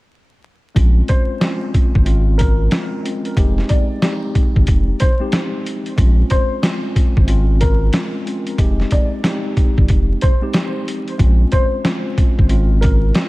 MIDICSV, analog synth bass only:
0, 0, Header, 1, 2, 480
1, 0, Start_track
1, 0, Tempo, 652174
1, 559, Time_signature, 4, 2, 24, 8
1, 9780, End_track
2, 0, Start_track
2, 0, Title_t, "Analog synth bass"
2, 0, Program_c, 0, 38
2, 560, Note_on_c, 0, 34, 108
2, 748, Note_off_c, 0, 34, 0
2, 1438, Note_on_c, 0, 32, 83
2, 1976, Note_off_c, 0, 32, 0
2, 2480, Note_on_c, 0, 29, 111
2, 2668, Note_off_c, 0, 29, 0
2, 3358, Note_on_c, 0, 32, 84
2, 3425, Note_off_c, 0, 32, 0
2, 3447, Note_on_c, 0, 29, 90
2, 3632, Note_off_c, 0, 29, 0
2, 4401, Note_on_c, 0, 34, 108
2, 4589, Note_off_c, 0, 34, 0
2, 5278, Note_on_c, 0, 32, 86
2, 5815, Note_off_c, 0, 32, 0
2, 6319, Note_on_c, 0, 29, 117
2, 6508, Note_off_c, 0, 29, 0
2, 7197, Note_on_c, 0, 32, 83
2, 7265, Note_off_c, 0, 32, 0
2, 7287, Note_on_c, 0, 29, 94
2, 7472, Note_off_c, 0, 29, 0
2, 8240, Note_on_c, 0, 34, 107
2, 8428, Note_off_c, 0, 34, 0
2, 9118, Note_on_c, 0, 32, 83
2, 9655, Note_off_c, 0, 32, 0
2, 9780, End_track
0, 0, End_of_file